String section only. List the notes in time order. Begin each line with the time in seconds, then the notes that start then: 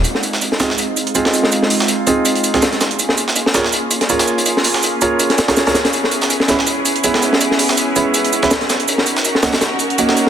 0.05 G#3 C4 D#4 F4
2.99 A#3 C#4 F4 G#4
5.93 B3 E4
8.88 D#4 F#4 A#4